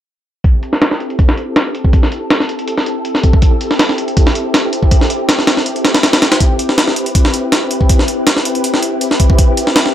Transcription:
0.44 string machine C4 E4 G4 A4, kick, closed hi-hat
0.63 closed hi-hat
0.73 snare
0.82 snare, closed hi-hat
0.91 snare
1.00 closed hi-hat
1.10 closed hi-hat
1.19 kick, closed hi-hat
1.29 snare
1.37 closed hi-hat
1.56 snare, closed hi-hat
1.75 closed hi-hat
1.84 kick
1.93 kick, closed hi-hat
2.03 snare
2.12 closed hi-hat
2.30 snare, closed hi-hat
2.40 snare
2.49 closed hi-hat
2.59 closed hi-hat
2.68 closed hi-hat
2.78 snare
2.86 closed hi-hat
3.05 closed hi-hat
3.15 snare
3.23 kick, closed hi-hat
3.33 kick
3.42 kick, closed hi-hat
3.61 closed hi-hat
3.71 snare
3.79 snare, closed hi-hat
3.89 snare
3.98 closed hi-hat
4.08 closed hi-hat
4.17 kick, closed hi-hat
4.27 snare
4.35 closed hi-hat
4.54 snare, closed hi-hat
4.73 closed hi-hat
4.83 kick
4.91 kick, closed hi-hat
5.01 snare
5.10 closed hi-hat
5.29 snare, closed hi-hat
5.39 snare
5.47 snare, closed hi-hat
5.57 snare
5.66 closed hi-hat
5.76 closed hi-hat
5.85 snare, closed hi-hat
5.94 snare, closed hi-hat
6.03 snare, closed hi-hat
6.13 snare, closed hi-hat
6.22 snare, closed hi-hat
6.32 snare, closed hi-hat
6.40 string machine B4, kick, closed hi-hat
6.59 closed hi-hat
6.69 snare
6.78 snare, closed hi-hat
6.88 snare
6.96 closed hi-hat
7.06 closed hi-hat
7.15 kick, closed hi-hat
7.25 snare
7.34 closed hi-hat
7.52 snare, closed hi-hat
7.71 closed hi-hat
7.81 kick
7.89 kick, closed hi-hat
7.99 snare
8.08 closed hi-hat
8.27 snare, closed hi-hat
8.37 snare
8.45 closed hi-hat
8.55 closed hi-hat
8.64 closed hi-hat
8.74 snare
8.82 closed hi-hat
9.01 closed hi-hat
9.11 snare
9.20 kick, closed hi-hat
9.30 kick
9.39 kick, closed hi-hat
9.57 closed hi-hat
9.67 snare
9.76 snare, closed hi-hat
9.86 snare

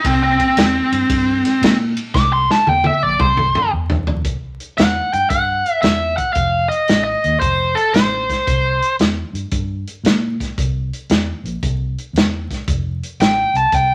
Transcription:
0.04 fingered electric bass C2, lead electric guitar C4, kick, ride
0.23 lead electric guitar C4
0.40 kick, ride
0.57 fingered electric bass E2, snare, ride
0.92 fingered electric bass G2, ride
1.10 fingered electric bass G2, kick, ride
1.45 snare, ride
1.61 fingered electric bass A#2, snare, ride
1.97 ride
2.14 fingered electric bass C2, lead electric guitar D6, kick, snare
2.33 lead electric guitar C6
2.51 lead electric guitar A5, snare
2.67 fingered electric bass E2, lead electric guitar G5, high tom
2.84 lead electric guitar E5, high tom
3.03 fingered electric bass A#1, lead electric guitar D5
3.19 fingered electric bass C2, lead electric guitar C5, kick, mid tom
3.37 mid tom
3.55 mid tom
3.73 fingered electric bass E2
3.90 floor tom
4.07 floor tom
4.25 fingered electric bass C2, kick, closed hi-hat
4.60 closed hi-hat
4.78 fingered electric bass E2, lead electric guitar F#5, snare, closed hi-hat
5.13 fingered electric bass G2, lead electric guitar G5, closed hi-hat
5.30 fingered electric bass G2, lead electric guitar F#5, kick, closed hi-hat
5.66 closed hi-hat
5.82 fingered electric bass E2, lead electric guitar E5, snare, closed hi-hat
6.17 lead electric guitar F#5, kick, closed hi-hat
6.33 fingered electric bass F1, lead electric guitar F5, kick, closed hi-hat
6.68 lead electric guitar D#5, closed hi-hat
6.88 fingered electric bass A1, snare, closed hi-hat
7.04 lead electric guitar D#5
7.24 fingered electric bass D#2, closed hi-hat
7.40 fingered electric bass F1, lead electric guitar C5, kick, closed hi-hat
7.75 lead electric guitar A4, closed hi-hat
7.93 fingered electric bass A1, lead electric guitar C5, snare, closed hi-hat
8.30 kick, snare, closed hi-hat
8.47 fingered electric bass C2, kick, closed hi-hat
8.82 closed hi-hat
8.99 fingered electric bass E2, snare, closed hi-hat
9.33 fingered electric bass G2, closed hi-hat
9.51 fingered electric bass G2, kick, closed hi-hat
9.87 closed hi-hat
10.04 fingered electric bass A#2, snare, closed hi-hat
10.40 kick, snare, closed hi-hat
10.58 fingered electric bass C2, kick, closed hi-hat
10.93 closed hi-hat
11.09 fingered electric bass E2, snare, closed hi-hat
11.44 fingered electric bass A#1, closed hi-hat
11.63 fingered electric bass C2, kick, closed hi-hat
11.98 closed hi-hat
12.13 fingered electric bass E2, closed hi-hat
12.17 snare
12.50 kick, snare, closed hi-hat
12.68 fingered electric bass F1, kick, closed hi-hat
13.03 closed hi-hat
13.20 fingered electric bass A1, lead electric guitar G5, snare, closed hi-hat
13.54 fingered electric bass C2, lead electric guitar A5, closed hi-hat
13.72 fingered electric bass C2, lead electric guitar G5, kick, closed hi-hat

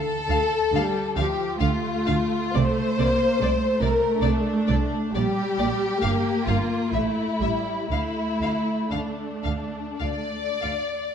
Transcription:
Already playing: violin section A4
0.29 double bass section D2, cello section D3, violin section F5
0.73 double bass section D2, cello section D3, viola section G3, violin section F5
1.17 double bass section D2, cello section D3, viola section F3, violin section G4 F5
1.60 double bass section D2, cello section D3, viola section A3, violin section F4 F5
2.07 double bass section D2, cello section D3, violin section F5
2.55 double bass section C2, cello section C3, viola section A3, violin section C5 D5
2.99 double bass section C2, cello section C3, viola section A#3, violin section D5
3.40 double bass section C2, cello section C3, viola section A3, violin section D5
3.81 double bass section C2, cello section C3, violin section A#4 D5
4.22 double bass section C2, cello section C3, violin section D4 D5
4.68 double bass section C2, cello section C3, violin section D5
5.15 double bass section A#1, cello section A#2, viola section G3, violin section G4 D5
5.59 double bass section A#1, cello section A#2, violin section D5
6.02 double bass section G1, cello section G2, viola section A#3, violin section F5
6.47 double bass section G1, cello section G2, violin section F4 F5
6.93 double bass section A1, cello section A2, viola section A3, violin section E4 E5
7.41 double bass section A1, cello section A2, viola section G3, violin section E5
7.91 double bass section D2, cello section D3, viola section A3, violin section E4 F5
8.41 double bass section D2, cello section D3, violin section F5
8.90 double bass section D2, cello section D3, violin section D4 F5
9.44 double bass section D2, cello section D3, violin section F5
10.00 double bass section D2, cello section D3, violin section D5 F5
10.62 double bass section D2, cello section D3, violin section F5

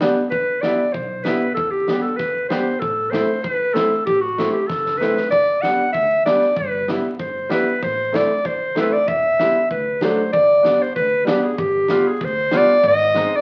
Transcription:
0.01 upright piano G3 B3 D4, snare
0.30 upright bass E2, clarinet B4, kick
0.61 upright piano G3 B3 E4, clarinet D5, snare
0.92 upright bass B1, clarinet C5, kick
1.23 upright piano G3 B3, clarinet B4, snare
1.28 upright piano E4
1.54 upright bass E2, clarinet A4, kick
1.71 clarinet G4
1.88 upright piano G3 B3 G4, snare
2.02 clarinet A4
2.17 upright bass E2, clarinet B4, kick, snare
2.49 upright piano G3 B3 G4, clarinet C5, snare
2.79 upright bass A1, clarinet A4, kick
3.11 upright piano A3 C4 E4, clarinet C5, snare
3.43 upright bass E2, clarinet B4, kick
3.74 upright piano A3 C4 E4, clarinet A4, snare
4.06 upright bass A1, clarinet G4, kick
4.21 clarinet F#4
4.38 upright piano A3 C4 E4, snare
4.52 clarinet G4
4.67 upright bass F#1, clarinet A4, kick, snare
4.86 snare
4.98 upright piano A3, clarinet B4, snare
5.02 upright piano C4 E4
5.17 snare
5.30 upright bass G1, clarinet D5, kick
5.61 clarinet F#5, snare
5.66 upright piano G3 B3 D4
5.93 upright bass D2, clarinet E5, kick
6.26 upright piano G3 B3 D4, clarinet D5, snare
6.42 snare
6.57 upright bass G1, clarinet B4, kick
6.88 upright piano G3 B3 E4, snare
7.19 upright bass G1, clarinet C5, kick
7.49 upright piano G3 B3 E4, clarinet B4, snare
7.83 upright bass A1, clarinet C5, kick
8.12 upright piano A3 C4 E4, clarinet D5, snare
8.45 upright bass E2, clarinet C5, kick
8.75 upright piano A3 C4 E4, clarinet B4, snare
8.81 clarinet A4 B4
8.92 clarinet D5
9.08 upright bass E1, clarinet E5, kick
9.39 upright piano G3 B3 E4, snare
9.70 upright bass D2, clarinet B4, kick
10.01 upright piano F#3 A3 D4, clarinet C5, snare
10.33 upright bass G1, clarinet D5, kick
10.63 upright piano G3 B3 D4, snare
10.82 clarinet C5
10.95 upright bass D2, clarinet B4, kick
11.25 upright piano G3 B3 D4, clarinet G4, snare
11.43 clarinet G#4
11.58 upright bass G1, clarinet G4, kick
11.88 upright piano G3 B3 F4, snare
12.07 clarinet G#4
12.21 upright bass D2, clarinet C5, kick
12.51 upright piano G3 B3 F4, snare
12.57 clarinet D5
12.83 upright bass G#1, kick
12.88 clarinet D#5
13.14 upright piano G#3 C4 D#4, snare
13.36 clarinet D5

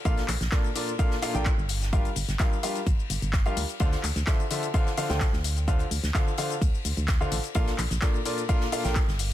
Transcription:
0.05 fm bass A#1, upright piano A#2 D4 F4 A4 A#4 F5, kick, closed hi-hat, ride, shaker
0.18 snare, closed hi-hat, shaker
0.28 fm bass A#1, clap, open hi-hat, ride, shaker
0.41 fm bass A#1, snare, closed hi-hat, shaker
0.51 upright piano A#2 D4 F4 A4 A#4 D5, kick, snare, clap, closed hi-hat, ride, shaker
0.64 ride, shaker
0.76 upright piano A#2 D4 F4 A4 A#4 D5, open hi-hat, ride, shaker
0.88 closed hi-hat, shaker
0.99 upright piano A#2 D4 F4 A4 A#4 F5, kick, closed hi-hat, ride, shaker
1.11 snare, shaker
1.22 upright piano A#2 D4 F4 A4 A#4 F5, snare, open hi-hat, ride, shaker
1.34 fm bass A#1, upright piano A#2 D4 F4 A4 A#4 G5, closed hi-hat, ride, shaker
1.45 kick, clap, closed hi-hat, ride, shaker
1.58 fm bass G1, shaker
1.69 open hi-hat, ride, shaker
1.82 snare, closed hi-hat, shaker
1.93 upright piano G3 D4 F4 G4 A#4 F5, kick, closed hi-hat, ride, shaker
2.05 closed hi-hat, ride, shaker
2.16 fm bass G1, open hi-hat, ride, shaker
2.29 fm bass G1, snare, closed hi-hat, shaker
2.39 upright piano G3 D4 F4 G4 A#4 F5, kick, snare, clap, closed hi-hat, ride, shaker
2.53 shaker
2.63 upright piano G3 D4 F4 G4 A#4 F5, open hi-hat, ride, shaker
2.75 closed hi-hat, ride, shaker
2.87 fm bass G1, kick, closed hi-hat, ride, shaker
3.00 shaker
3.10 fm bass G1, open hi-hat, ride, shaker
3.22 fm bass G1, closed hi-hat, shaker
3.33 kick, snare, clap, closed hi-hat, ride, shaker
3.46 upright piano G3 D4 F4 G4 A#4 F5, closed hi-hat, shaker
3.57 fm bass D2, open hi-hat, ride, shaker
3.69 closed hi-hat, ride, shaker
3.80 fm bass D2, upright piano D3 D4 F4 A4 C5 F5, kick, closed hi-hat, ride, shaker
3.92 snare, closed hi-hat, shaker
4.03 fm bass D2, clap, open hi-hat, ride, shaker
4.15 fm bass D2, snare, closed hi-hat, shaker
4.27 upright piano D3 D4 F4 A4 C5 E5, kick, snare, clap, closed hi-hat, ride, shaker
4.40 ride, shaker
4.51 upright piano D3 D4 F4 A4 C5 E5, open hi-hat, ride, shaker
4.63 closed hi-hat, shaker
4.74 upright piano D3 D4 F4 A4 C5 F5, kick, closed hi-hat, ride, shaker
4.86 snare, shaker
4.97 upright piano D3 D4 F4 A4 C5 F5, open hi-hat, shaker
5.10 fm bass D2, upright piano D3 D4 F4 A4 C5 G5, snare, closed hi-hat, shaker
5.20 kick, snare, clap, closed hi-hat, ride, shaker
5.33 fm bass D2, snare, shaker
5.44 open hi-hat, ride, shaker
5.57 closed hi-hat, shaker
5.68 upright piano D3 D4 F4 A4 C5 F5, kick, closed hi-hat, ride, shaker
5.79 closed hi-hat, ride, shaker
5.91 fm bass D2, open hi-hat, ride, shaker
6.03 fm bass D2, snare, closed hi-hat, shaker
6.14 upright piano D3 D4 F4 A4 C5 F5, kick, snare, clap, closed hi-hat, ride, shaker
6.28 shaker
6.37 upright piano D3 D4 F4 A4 C5 F5, open hi-hat, ride, shaker
6.50 closed hi-hat, ride, shaker
6.61 fm bass D2, kick, closed hi-hat, ride, shaker
6.75 shaker
6.85 fm bass D2, open hi-hat, ride, shaker
6.97 fm bass D2, closed hi-hat, shaker
7.08 kick, snare, clap, closed hi-hat, ride, shaker
7.21 upright piano D3 D4 F4 A4 C5 F5, shaker
7.32 fm bass A1, open hi-hat, ride, shaker
7.43 closed hi-hat, ride, shaker
7.55 fm bass A#1, upright piano A#2 D4 F4 A4 A#4 F5, kick, closed hi-hat, ride, shaker
7.67 snare, closed hi-hat, shaker
7.78 fm bass A#1, clap, open hi-hat, ride, shaker
7.90 fm bass A#1, snare, closed hi-hat, shaker
8.01 upright piano A#2 D4 F4 A4 A#4 D5, kick, snare, clap, closed hi-hat, ride, shaker
8.14 ride, shaker
8.25 upright piano A#2 D4 F4 A4 A#4 D5, open hi-hat, ride, shaker
8.38 closed hi-hat, shaker
8.49 upright piano A#2 D4 F4 A4 A#4 F5, kick, closed hi-hat, ride, shaker
8.61 snare, shaker
8.72 upright piano A#2 D4 F4 A4 A#4 F5, open hi-hat, shaker
8.85 fm bass A#1, upright piano A#2 D4 F4 A4 A#4 G5, snare, closed hi-hat, shaker
8.95 kick, snare, clap, closed hi-hat, ride, shaker
9.08 fm bass G1, snare, shaker
9.19 open hi-hat, ride, shaker

